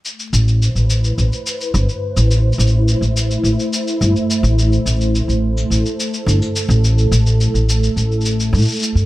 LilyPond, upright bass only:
\new Staff \with { instrumentName = "Upright bass" } { \clef bass \time 4/4 \key a \dorian \tempo 4 = 106 r8 a,,8. a,,8. a,,16 r8. g,,16 r8 a,,16~ | a,,8 a,,8. a,,8. a,,16 r8. g,,16 r8 a,,16~ | a,,8 a,,8. a,,8. a,,16 r8. g,,16 r8 a,,16~ | a,,8 a,,8. a,,8. a,,4 a,16 r8 g,16 | }